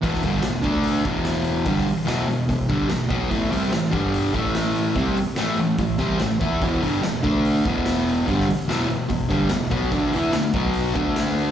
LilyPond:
<<
  \new Staff \with { instrumentName = "Distorted electric guitar" } { \clef bass \time 4/4 \key a \major \tempo 4 = 146 <e, b, e>8 <g, d g>8 <e, b,>8 <d a d'>4 <e, b, e>4. | <g, d g>8 r8 <e, b, e>8 <e, b,>8 <e, b,>8 <g, d g>8 <e, b,>8 <b, fis b>8 | <a, e a>8 <c g c'>8 <a, e>8 <g, d g>4 <a, e a>4. | <c g c'>8 r8 <a, e a>8 <a, e>8 <a, e>8 <c g c'>8 <a, e>8 <e b e'>8 |
<e, b, e>8 <g, d g>8 <e, b,>8 <d a d'>4 <e, b, e>4. | <g, d g>8 r8 <e, b, e>8 <e, b,>8 <e, b,>8 <g, d g>8 <e, b,>8 <b, fis b>8 | <d a d'>8 <e b e'>8 <d a>8 <b, fis b>4 <d a d'>4. | }
  \new Staff \with { instrumentName = "Picked electric bass" } { \clef bass \time 4/4 \key a \major e,,8 g,,8 e,,8 d,4 e,,4. | g,,8 r8 e,,8 e,,8 e,,8 g,,8 e,,8 b,,8 | a,,8 c,8 a,,8 g,,4 a,,4. | c,8 r8 a,,8 a,,8 a,,8 c,8 a,,8 e,8 |
e,,8 g,,8 e,,8 d,4 e,,4. | g,,8 r8 e,,8 e,,8 e,,8 g,,8 e,,8 b,,8 | d,8 e,8 d,8 b,,4 d,4. | }
  \new DrumStaff \with { instrumentName = "Drums" } \drummode { \time 4/4 <hho bd>16 sn16 <hho bd>8 <hho sn>8 <hho bd>8 hho8 <hho bd>8 <hho sn>8 hho8 | <hho bd>16 sn16 hho8 <hho sn>8 hho8 <hho bd>8 <hho bd>8 <hho sn>8 <hho bd>8 | <hho bd>8 hho8 <hho sn>8 <hho bd>8 hho8 <hho bd>8 <hho sn>8 hho8 | <hho bd>8 hho8 <hho sn>8 hho8 <hho bd>8 <hho bd sn>8 <hho sn>8 <hho bd>8 |
<hho bd>8 hho8 <hho sn>8 <hho bd>8 hho8 <hho bd>8 <hho sn>8 hho8 | <hho bd>16 sn16 hho8 <hho sn>8 hho8 <hho bd>8 <hho bd>8 <hho sn>8 <hho bd>8 | <hho bd>8 hho8 <hho sn>8 <hho bd>8 hho8 <hho bd>8 <hho sn>8 hho8 | }
>>